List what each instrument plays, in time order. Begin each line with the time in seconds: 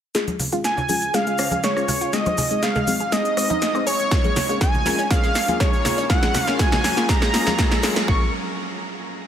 0.15 ambient pad C#3 C#4 F4 G#4, synth pluck G#3, synth stab G#3 C#4 F4 G#4, snare, closed hi-hat, riser, shaker
0.27 closed hi-hat, high conga, shaker
0.39 analog synth bass C#2, synth pluck F5, open hi-hat, low conga, shaker
0.52 analog synth bass G#1, synth stab G#3 C#4 F4 G#4, synth pluck F4, closed hi-hat, shaker
0.64 analog synth lead G#5, digital synth lead G#5, snare, closed hi-hat, shaker
0.77 synth pluck C#5, low conga, shaker
0.89 analog synth bass C#2, synth stab G#3 C#4 F4 G#4, synth pluck G#4, open hi-hat, high conga, shaker
1.02 analog synth bass C#2, closed hi-hat, shaker
1.14 synth pluck G#3, synth stab G#3 C#4 F4 G#4, digital synth lead F5, analog synth lead F5, snare, closed hi-hat, shaker
1.27 synth pluck G#3, closed hi-hat, shaker
1.38 analog synth bass C#2, synth stab G#3 C#4 F4 C#5, cross-stick, open hi-hat, shaker
1.51 analog synth bass C#2, synth pluck G#4, closed hi-hat, high conga, shaker
1.63 synth pluck G#3, analog synth lead C#5, digital synth lead C#5, snare, closed hi-hat, shaker
1.76 synth stab G#3 C#4 F4 G#4, cross-stick, shaker
1.88 analog synth bass C#2, synth pluck F5, open hi-hat, low conga, shaker
2.01 analog synth bass C#2, synth pluck F4, closed hi-hat, shaker
2.13 ambient pad G#3 C4 D#4, synth stab G#3 C4 D#4 G#4, analog synth lead D#5, digital synth lead D#5, snare, closed hi-hat, shaker
2.26 synth pluck C5, closed hi-hat, high conga, shaker
2.38 analog synth bass G#1, synth pluck G#4, open hi-hat, low conga, shaker
2.50 analog synth bass G#1, synth stab G#3 C4 D#4 G#4, closed hi-hat, shaker
2.63 synth pluck G#3, analog synth lead F5, digital synth lead F5, snare, closed hi-hat, shaker
2.75 synth pluck G#3, low conga, shaker
2.87 analog synth bass G#1, synth stab G#3 C4 D#4 G#4, open hi-hat, high conga, shaker
3.00 analog synth bass G#1, synth pluck G#4, closed hi-hat, shaker
3.12 synth pluck G#3, synth stab G#3 C4 D#4 G#4, analog synth lead D#5, digital synth lead D#5, snare, closed hi-hat, shaker
3.25 closed hi-hat, shaker
3.37 analog synth bass G#1, synth stab G#3 C4 D#4 C5, synth pluck D#5, cross-stick, open hi-hat, shaker
3.50 analog synth bass G#1, synth pluck D#4, closed hi-hat, high conga, shaker
3.62 snare, closed hi-hat, shaker
3.75 synth stab G#3 C4 D#4 G#4, synth pluck C5, cross-stick, shaker
3.87 analog synth bass F#1, synth pluck G#4, analog synth lead C#5, digital synth lead C#5, open hi-hat, shaker
4.00 analog synth bass F#1, closed hi-hat, shaker
4.11 synth pluck G#3, ambient pad G#3 A#3 C#4, synth stab A#3 C#4 F4 G#4, kick, snare, closed hi-hat, shaker
4.24 synth pluck G#3, closed hi-hat, high conga, shaker
4.36 analog synth bass A#1, snare, open hi-hat, low conga, shaker
4.49 analog synth bass G#1, synth stab A#3 C#4 F4 G#4, synth pluck F4, closed hi-hat, shaker
4.61 synth pluck G#3, analog synth lead G#5, digital synth lead G#5, kick, snare, closed hi-hat, shaker
4.74 low conga, shaker
4.85 analog synth bass A#1, synth stab A#3 C#4 F4 G#4, synth pluck A#4, snare, open hi-hat, high conga, shaker
4.99 analog synth bass A#1, synth pluck C#4, closed hi-hat, shaker
5.11 synth pluck G#3, synth stab A#3 C#4 F4 G#4, analog synth lead F5, digital synth lead F5, kick, snare, closed hi-hat, shaker
5.24 synth pluck G#3, closed hi-hat, shaker
5.35 analog synth bass A#1, snare, open hi-hat, shaker
5.48 analog synth bass A#1, synth stab A#3 C#4 F4 G#4, synth pluck F4, closed hi-hat, high conga, shaker
5.60 synth pluck G#3, digital synth lead C#5, analog synth lead C#5, kick, snare, closed hi-hat, shaker
5.73 shaker
5.85 analog synth bass A#1, synth stab A#3 C#4 F4 G#4, synth pluck A#4, snare, open hi-hat, low conga, shaker
5.98 analog synth bass A#1, synth pluck C#4, closed hi-hat, shaker
6.10 ambient pad F#3, synth pluck G#3, synth stab A#3 C#4 F4 G#4, analog synth lead F#5, digital synth lead F#5, kick, snare, closed hi-hat, shaker
6.23 synth pluck G#3, snare, closed hi-hat, high conga, shaker
6.34 analog synth bass F#1, snare, open hi-hat, low conga, shaker
6.44 analog synth bass F#1, synth stab A#3 C#4 F4 G#4, synth pluck F4, analog synth lead F5, digital synth lead F5, snare, closed hi-hat, shaker
6.59 synth pluck G#3, synth stab A#3 C#4 F4 G#4, analog synth lead G#5, digital synth lead G#5, kick, snare, closed hi-hat, shaker
6.72 synth pluck G#3, snare, low conga, shaker
6.84 analog synth bass F#1, snare, open hi-hat, high conga, shaker
6.97 analog synth bass F#1, synth stab A#3 C#4 F4 G#4, synth pluck F4, snare, closed hi-hat, shaker
7.09 synth pluck G#3, synth stab C#4 F4 G#4, digital synth lead A#5, analog synth lead A#5, kick, snare, closed hi-hat, shaker
7.22 synth pluck G#3, snare, closed hi-hat, shaker
7.34 analog synth bass F#1, synth pluck G#3, synth stab A#3 C#4 F4 G#4, snare, open hi-hat, shaker
7.46 analog synth bass F#1, synth pluck G#3, snare, closed hi-hat, high conga, shaker
7.58 synth pluck G#3, synth stab A#3 C#4 F4 G#4, kick, snare, closed hi-hat, shaker
7.71 synth pluck G#3, snare, shaker
7.83 analog synth bass F#1, synth pluck G#3, synth stab A#3 C#4 F4 G#4, snare, open hi-hat, shaker
7.96 analog synth bass F#1, synth pluck G#3, snare, closed hi-hat, shaker
8.08 analog synth bass A#1, synth pluck G#3, synth stab A#3 C#4 F4 G#4, digital synth lead C#6, analog synth lead C#6, kick